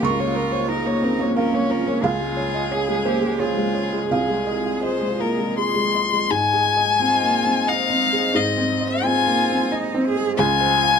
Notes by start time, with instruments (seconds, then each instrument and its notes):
Already playing: analog synth pad A#3
0.02 felt piano C#2 C#6, analog synth pad C#4 F4, cello F4, violin A#4
0.19 felt piano A#3, violin C#5
0.35 felt piano A#4, violin A#4
0.52 felt piano C5, violin C#5
0.68 cello D#4, felt piano A#4, violin A#4
0.85 felt piano A#3, violin C#5
1.02 felt piano C4, violin A#4
1.19 felt piano A#3, violin C#5
1.36 cello C#4, felt piano A#4 F5, violin A#4
1.53 felt piano A#3, violin C#5
1.70 felt piano A#4, violin A#4
1.87 felt piano A#3, violin C#5
2.03 felt piano C#2 F5, analog synth pad G#3 F4, cello F4, violin G#4
2.21 felt piano G#3
2.37 felt piano C#5
2.54 felt piano D#5
2.71 cello G#4, felt piano C#5
2.89 felt piano G#3
3.05 felt piano A#3 C5, cello G4
3.22 felt piano G#3
3.40 cello F4, felt piano G#4 C#5, violin G#4
3.57 felt piano G#3
3.75 felt piano C#5
3.93 felt piano G#3
4.11 felt piano C2 F5, cello G#4, violin G#4, analog synth pad D#5
4.29 felt piano G#3
4.47 felt piano D#5
4.65 felt piano F5
4.82 violin C5, felt piano D#5
5.01 felt piano G#3
5.20 felt piano A#3, violin A#4
5.39 felt piano G#3
5.57 felt piano G#4, violin C6
5.76 felt piano G#3
5.95 felt piano D#5
6.13 felt piano G#3
6.30 felt piano G#2, analog synth pad G#3 C5 D#5, violin G#5
6.53 felt piano G#4
6.77 felt piano D#5
7.00 felt piano C4, cello F4
7.22 felt piano A#3
7.44 felt piano C4
7.67 cello D#4, felt piano D#5, violin F5
7.90 felt piano C4
8.13 felt piano G#4
8.35 felt piano G#2, cello C4, violin D#5
8.58 felt piano C4
8.81 felt piano D#5
9.04 felt piano C4, cello F4, violin G#5
9.27 felt piano A#3
9.50 felt piano C4
9.72 cello D#4, felt piano D#5
9.94 felt piano C4
10.05 cello G#4
10.17 felt piano G#4
10.37 felt piano C#2, analog synth pad G#3 C5 F5, cello F4, violin G#5
10.61 felt piano C5
10.83 felt piano F5